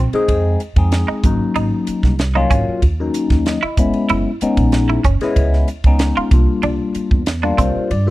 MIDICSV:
0, 0, Header, 1, 6, 480
1, 0, Start_track
1, 0, Tempo, 634921
1, 1178, Time_signature, 4, 2, 24, 8
1, 6125, End_track
2, 0, Start_track
2, 0, Title_t, "Clean electric guitar"
2, 0, Program_c, 0, 27
2, 0, Note_on_c, 0, 60, 62
2, 194, Note_off_c, 0, 60, 0
2, 819, Note_on_c, 0, 63, 59
2, 1034, Note_off_c, 0, 63, 0
2, 1177, Note_on_c, 0, 63, 71
2, 1392, Note_off_c, 0, 63, 0
2, 1779, Note_on_c, 0, 63, 59
2, 1884, Note_off_c, 0, 63, 0
2, 1895, Note_on_c, 0, 61, 68
2, 2110, Note_off_c, 0, 61, 0
2, 2742, Note_on_c, 0, 64, 60
2, 2956, Note_off_c, 0, 64, 0
2, 3099, Note_on_c, 0, 64, 75
2, 3313, Note_off_c, 0, 64, 0
2, 3700, Note_on_c, 0, 64, 55
2, 3804, Note_off_c, 0, 64, 0
2, 3816, Note_on_c, 0, 61, 65
2, 4031, Note_off_c, 0, 61, 0
2, 4664, Note_on_c, 0, 65, 54
2, 4877, Note_off_c, 0, 65, 0
2, 5015, Note_on_c, 0, 62, 79
2, 5230, Note_off_c, 0, 62, 0
2, 5619, Note_on_c, 0, 62, 59
2, 5724, Note_off_c, 0, 62, 0
2, 5732, Note_on_c, 0, 60, 70
2, 5949, Note_off_c, 0, 60, 0
2, 6125, End_track
3, 0, Start_track
3, 0, Title_t, "Tine electric piano"
3, 0, Program_c, 1, 4
3, 104, Note_on_c, 1, 56, 85
3, 108, Note_on_c, 1, 60, 80
3, 112, Note_on_c, 1, 63, 77
3, 116, Note_on_c, 1, 68, 95
3, 451, Note_off_c, 1, 56, 0
3, 453, Note_off_c, 1, 60, 0
3, 455, Note_off_c, 1, 63, 0
3, 457, Note_off_c, 1, 68, 0
3, 580, Note_on_c, 1, 56, 64
3, 583, Note_on_c, 1, 60, 69
3, 590, Note_on_c, 1, 63, 66
3, 593, Note_on_c, 1, 68, 81
3, 935, Note_on_c, 1, 54, 75
3, 937, Note_off_c, 1, 56, 0
3, 938, Note_off_c, 1, 60, 0
3, 940, Note_on_c, 1, 58, 63
3, 942, Note_off_c, 1, 63, 0
3, 943, Note_off_c, 1, 68, 0
3, 948, Note_on_c, 1, 61, 57
3, 950, Note_on_c, 1, 63, 77
3, 1610, Note_off_c, 1, 54, 0
3, 1612, Note_off_c, 1, 58, 0
3, 1616, Note_off_c, 1, 61, 0
3, 1617, Note_off_c, 1, 63, 0
3, 1777, Note_on_c, 1, 54, 83
3, 1782, Note_on_c, 1, 58, 69
3, 1786, Note_on_c, 1, 61, 75
3, 1791, Note_on_c, 1, 65, 99
3, 2127, Note_off_c, 1, 54, 0
3, 2130, Note_off_c, 1, 58, 0
3, 2132, Note_off_c, 1, 61, 0
3, 2134, Note_off_c, 1, 65, 0
3, 2268, Note_on_c, 1, 54, 65
3, 2270, Note_on_c, 1, 58, 55
3, 2272, Note_on_c, 1, 61, 55
3, 2278, Note_on_c, 1, 63, 72
3, 2627, Note_on_c, 1, 75, 68
3, 2703, Note_off_c, 1, 54, 0
3, 2703, Note_off_c, 1, 58, 0
3, 2705, Note_off_c, 1, 61, 0
3, 2708, Note_off_c, 1, 63, 0
3, 2845, Note_off_c, 1, 75, 0
3, 2860, Note_on_c, 1, 56, 78
3, 2861, Note_on_c, 1, 59, 62
3, 2863, Note_on_c, 1, 83, 61
3, 2866, Note_on_c, 1, 61, 64
3, 2871, Note_on_c, 1, 64, 82
3, 3084, Note_off_c, 1, 83, 0
3, 3246, Note_off_c, 1, 56, 0
3, 3246, Note_off_c, 1, 59, 0
3, 3249, Note_off_c, 1, 61, 0
3, 3251, Note_off_c, 1, 64, 0
3, 3340, Note_on_c, 1, 56, 76
3, 3342, Note_on_c, 1, 59, 75
3, 3346, Note_on_c, 1, 61, 77
3, 3348, Note_on_c, 1, 63, 94
3, 3779, Note_off_c, 1, 56, 0
3, 3780, Note_off_c, 1, 59, 0
3, 3782, Note_off_c, 1, 61, 0
3, 3783, Note_off_c, 1, 63, 0
3, 3942, Note_on_c, 1, 56, 90
3, 3948, Note_on_c, 1, 59, 74
3, 3954, Note_on_c, 1, 61, 74
3, 3956, Note_on_c, 1, 64, 97
3, 4290, Note_off_c, 1, 56, 0
3, 4292, Note_off_c, 1, 59, 0
3, 4296, Note_off_c, 1, 61, 0
3, 4296, Note_off_c, 1, 64, 0
3, 4427, Note_on_c, 1, 56, 65
3, 4434, Note_on_c, 1, 59, 68
3, 4434, Note_on_c, 1, 61, 73
3, 4440, Note_on_c, 1, 63, 86
3, 4780, Note_off_c, 1, 56, 0
3, 4781, Note_on_c, 1, 55, 65
3, 4782, Note_on_c, 1, 58, 64
3, 4784, Note_off_c, 1, 59, 0
3, 4784, Note_off_c, 1, 61, 0
3, 4787, Note_off_c, 1, 63, 0
3, 4787, Note_on_c, 1, 62, 65
3, 4790, Note_on_c, 1, 65, 69
3, 5453, Note_off_c, 1, 55, 0
3, 5454, Note_off_c, 1, 58, 0
3, 5456, Note_off_c, 1, 62, 0
3, 5458, Note_off_c, 1, 65, 0
3, 5617, Note_on_c, 1, 55, 85
3, 5624, Note_on_c, 1, 58, 72
3, 5628, Note_on_c, 1, 62, 78
3, 5630, Note_on_c, 1, 65, 84
3, 5740, Note_on_c, 1, 72, 60
3, 5962, Note_off_c, 1, 72, 0
3, 5967, Note_off_c, 1, 55, 0
3, 5971, Note_off_c, 1, 58, 0
3, 5973, Note_off_c, 1, 62, 0
3, 5974, Note_off_c, 1, 65, 0
3, 5982, Note_on_c, 1, 74, 65
3, 6095, Note_off_c, 1, 74, 0
3, 6098, Note_on_c, 1, 55, 65
3, 6102, Note_on_c, 1, 58, 64
3, 6125, Note_off_c, 1, 55, 0
3, 6125, Note_off_c, 1, 58, 0
3, 6125, End_track
4, 0, Start_track
4, 0, Title_t, "Upright bass"
4, 0, Program_c, 2, 32
4, 0, Note_on_c, 2, 34, 80
4, 78, Note_off_c, 2, 34, 0
4, 214, Note_on_c, 2, 41, 89
4, 414, Note_off_c, 2, 41, 0
4, 576, Note_on_c, 2, 41, 81
4, 777, Note_off_c, 2, 41, 0
4, 934, Note_on_c, 2, 32, 79
4, 1038, Note_off_c, 2, 32, 0
4, 1177, Note_on_c, 2, 32, 77
4, 1280, Note_off_c, 2, 32, 0
4, 1535, Note_on_c, 2, 36, 87
4, 1832, Note_off_c, 2, 36, 0
4, 1894, Note_on_c, 2, 32, 78
4, 1998, Note_off_c, 2, 32, 0
4, 2134, Note_on_c, 2, 39, 78
4, 2334, Note_off_c, 2, 39, 0
4, 2498, Note_on_c, 2, 39, 70
4, 2698, Note_off_c, 2, 39, 0
4, 2852, Note_on_c, 2, 30, 76
4, 2956, Note_off_c, 2, 30, 0
4, 3101, Note_on_c, 2, 30, 78
4, 3202, Note_off_c, 2, 30, 0
4, 3457, Note_on_c, 2, 34, 84
4, 3754, Note_off_c, 2, 34, 0
4, 3813, Note_on_c, 2, 30, 88
4, 3917, Note_off_c, 2, 30, 0
4, 4053, Note_on_c, 2, 37, 85
4, 4253, Note_off_c, 2, 37, 0
4, 4414, Note_on_c, 2, 37, 65
4, 4616, Note_off_c, 2, 37, 0
4, 4774, Note_on_c, 2, 36, 83
4, 4877, Note_off_c, 2, 36, 0
4, 5014, Note_on_c, 2, 36, 71
4, 5118, Note_off_c, 2, 36, 0
4, 5376, Note_on_c, 2, 40, 79
4, 5673, Note_off_c, 2, 40, 0
4, 5734, Note_on_c, 2, 36, 77
4, 5838, Note_off_c, 2, 36, 0
4, 5978, Note_on_c, 2, 43, 90
4, 6125, Note_off_c, 2, 43, 0
4, 6125, End_track
5, 0, Start_track
5, 0, Title_t, "Muted upright bass strokes"
5, 99, Note_on_c, 9, 29, 36
5, 175, Note_off_c, 9, 29, 0
5, 822, Note_on_c, 9, 29, 35
5, 898, Note_off_c, 9, 29, 0
5, 1422, Note_on_c, 9, 29, 32
5, 1498, Note_off_c, 9, 29, 0
5, 2025, Note_on_c, 9, 29, 35
5, 2100, Note_off_c, 9, 29, 0
5, 2746, Note_on_c, 9, 29, 34
5, 2822, Note_off_c, 9, 29, 0
5, 3339, Note_on_c, 9, 29, 35
5, 3415, Note_off_c, 9, 29, 0
5, 3943, Note_on_c, 9, 29, 36
5, 4019, Note_off_c, 9, 29, 0
5, 4665, Note_on_c, 9, 29, 37
5, 4740, Note_off_c, 9, 29, 0
5, 5257, Note_on_c, 9, 29, 33
5, 5333, Note_off_c, 9, 29, 0
5, 5863, Note_on_c, 9, 29, 35
5, 5939, Note_off_c, 9, 29, 0
5, 6125, End_track
6, 0, Start_track
6, 0, Title_t, "Drums"
6, 99, Note_on_c, 9, 51, 58
6, 174, Note_off_c, 9, 51, 0
6, 214, Note_on_c, 9, 36, 59
6, 216, Note_on_c, 9, 51, 75
6, 290, Note_off_c, 9, 36, 0
6, 291, Note_off_c, 9, 51, 0
6, 454, Note_on_c, 9, 44, 81
6, 454, Note_on_c, 9, 51, 62
6, 529, Note_off_c, 9, 44, 0
6, 529, Note_off_c, 9, 51, 0
6, 577, Note_on_c, 9, 36, 66
6, 577, Note_on_c, 9, 51, 52
6, 653, Note_off_c, 9, 36, 0
6, 653, Note_off_c, 9, 51, 0
6, 693, Note_on_c, 9, 51, 79
6, 700, Note_on_c, 9, 38, 98
6, 769, Note_off_c, 9, 51, 0
6, 775, Note_off_c, 9, 38, 0
6, 934, Note_on_c, 9, 36, 90
6, 934, Note_on_c, 9, 44, 71
6, 934, Note_on_c, 9, 51, 56
6, 1010, Note_off_c, 9, 36, 0
6, 1010, Note_off_c, 9, 44, 0
6, 1010, Note_off_c, 9, 51, 0
6, 1176, Note_on_c, 9, 51, 71
6, 1251, Note_off_c, 9, 51, 0
6, 1413, Note_on_c, 9, 44, 68
6, 1413, Note_on_c, 9, 51, 61
6, 1489, Note_off_c, 9, 44, 0
6, 1489, Note_off_c, 9, 51, 0
6, 1537, Note_on_c, 9, 36, 62
6, 1539, Note_on_c, 9, 38, 29
6, 1612, Note_off_c, 9, 36, 0
6, 1615, Note_off_c, 9, 38, 0
6, 1654, Note_on_c, 9, 51, 66
6, 1660, Note_on_c, 9, 38, 90
6, 1730, Note_off_c, 9, 51, 0
6, 1736, Note_off_c, 9, 38, 0
6, 1895, Note_on_c, 9, 36, 76
6, 1895, Note_on_c, 9, 44, 74
6, 1895, Note_on_c, 9, 51, 53
6, 1970, Note_off_c, 9, 36, 0
6, 1970, Note_off_c, 9, 44, 0
6, 1970, Note_off_c, 9, 51, 0
6, 2134, Note_on_c, 9, 36, 60
6, 2135, Note_on_c, 9, 51, 68
6, 2210, Note_off_c, 9, 36, 0
6, 2211, Note_off_c, 9, 51, 0
6, 2374, Note_on_c, 9, 44, 80
6, 2374, Note_on_c, 9, 51, 60
6, 2450, Note_off_c, 9, 44, 0
6, 2450, Note_off_c, 9, 51, 0
6, 2495, Note_on_c, 9, 51, 50
6, 2497, Note_on_c, 9, 36, 72
6, 2501, Note_on_c, 9, 38, 27
6, 2571, Note_off_c, 9, 51, 0
6, 2572, Note_off_c, 9, 36, 0
6, 2577, Note_off_c, 9, 38, 0
6, 2614, Note_on_c, 9, 51, 69
6, 2620, Note_on_c, 9, 38, 90
6, 2690, Note_off_c, 9, 51, 0
6, 2696, Note_off_c, 9, 38, 0
6, 2852, Note_on_c, 9, 44, 80
6, 2852, Note_on_c, 9, 51, 50
6, 2853, Note_on_c, 9, 36, 92
6, 2928, Note_off_c, 9, 44, 0
6, 2928, Note_off_c, 9, 51, 0
6, 2929, Note_off_c, 9, 36, 0
6, 2975, Note_on_c, 9, 51, 51
6, 3051, Note_off_c, 9, 51, 0
6, 3093, Note_on_c, 9, 51, 73
6, 3169, Note_off_c, 9, 51, 0
6, 3333, Note_on_c, 9, 44, 83
6, 3333, Note_on_c, 9, 51, 55
6, 3408, Note_off_c, 9, 44, 0
6, 3408, Note_off_c, 9, 51, 0
6, 3456, Note_on_c, 9, 51, 58
6, 3457, Note_on_c, 9, 36, 69
6, 3532, Note_off_c, 9, 36, 0
6, 3532, Note_off_c, 9, 51, 0
6, 3569, Note_on_c, 9, 51, 70
6, 3575, Note_on_c, 9, 38, 85
6, 3645, Note_off_c, 9, 51, 0
6, 3651, Note_off_c, 9, 38, 0
6, 3813, Note_on_c, 9, 36, 77
6, 3815, Note_on_c, 9, 44, 70
6, 3815, Note_on_c, 9, 51, 56
6, 3889, Note_off_c, 9, 36, 0
6, 3891, Note_off_c, 9, 44, 0
6, 3891, Note_off_c, 9, 51, 0
6, 3937, Note_on_c, 9, 51, 59
6, 3943, Note_on_c, 9, 38, 27
6, 4012, Note_off_c, 9, 51, 0
6, 4019, Note_off_c, 9, 38, 0
6, 4053, Note_on_c, 9, 36, 64
6, 4055, Note_on_c, 9, 51, 75
6, 4129, Note_off_c, 9, 36, 0
6, 4130, Note_off_c, 9, 51, 0
6, 4182, Note_on_c, 9, 38, 30
6, 4257, Note_off_c, 9, 38, 0
6, 4292, Note_on_c, 9, 44, 79
6, 4292, Note_on_c, 9, 51, 61
6, 4367, Note_off_c, 9, 44, 0
6, 4367, Note_off_c, 9, 51, 0
6, 4414, Note_on_c, 9, 51, 55
6, 4416, Note_on_c, 9, 36, 68
6, 4490, Note_off_c, 9, 51, 0
6, 4492, Note_off_c, 9, 36, 0
6, 4529, Note_on_c, 9, 51, 71
6, 4535, Note_on_c, 9, 38, 104
6, 4604, Note_off_c, 9, 51, 0
6, 4610, Note_off_c, 9, 38, 0
6, 4772, Note_on_c, 9, 36, 89
6, 4773, Note_on_c, 9, 44, 73
6, 4773, Note_on_c, 9, 51, 63
6, 4847, Note_off_c, 9, 36, 0
6, 4848, Note_off_c, 9, 44, 0
6, 4848, Note_off_c, 9, 51, 0
6, 5010, Note_on_c, 9, 51, 74
6, 5086, Note_off_c, 9, 51, 0
6, 5251, Note_on_c, 9, 44, 82
6, 5251, Note_on_c, 9, 51, 56
6, 5327, Note_off_c, 9, 44, 0
6, 5327, Note_off_c, 9, 51, 0
6, 5376, Note_on_c, 9, 36, 62
6, 5452, Note_off_c, 9, 36, 0
6, 5491, Note_on_c, 9, 51, 81
6, 5497, Note_on_c, 9, 38, 93
6, 5566, Note_off_c, 9, 51, 0
6, 5572, Note_off_c, 9, 38, 0
6, 5733, Note_on_c, 9, 36, 73
6, 5737, Note_on_c, 9, 44, 75
6, 5737, Note_on_c, 9, 51, 58
6, 5809, Note_off_c, 9, 36, 0
6, 5812, Note_off_c, 9, 44, 0
6, 5812, Note_off_c, 9, 51, 0
6, 5978, Note_on_c, 9, 51, 73
6, 6054, Note_off_c, 9, 51, 0
6, 6125, End_track
0, 0, End_of_file